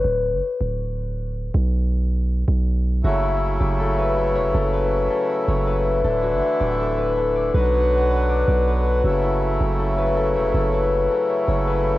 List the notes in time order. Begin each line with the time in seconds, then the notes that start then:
Already playing: A4 B4 C#5
0.04 D1
0.32 F#1
0.61 D1
1.54 B1
2.48 B1
3.04 F#1 C#3 F#3 A3 E4 F#4
3.23 E4
3.60 F#1 G4
3.79 A4
3.98 B4
4.17 A4
4.35 E1 C#5
4.45 F#1
4.54 F#1 A4
4.73 B4
5.10 A4
5.29 C#5
5.48 F#1 C#5
5.67 B4
6.04 D1 D3 E3 E4 A4
6.23 F#4
6.32 F#1
6.60 D1 G4
6.79 A4
6.98 B4
7.17 A4
7.36 D5
7.54 B1 F#3 B3 F#4 B4
7.73 C#5
8.10 B4
8.29 D5
8.48 B1 D5
8.67 B4
8.86 F#4
9.04 F#1 C#3 A3 E4 F#4
9.23 E4
9.60 F#1 G4
9.79 A4
9.98 B4
10.17 A4
10.36 E1 C#5
10.45 F#1
10.54 F#1 A4
10.73 B4
11.11 A4
11.29 C#5
11.48 F#1 C#5
11.67 B4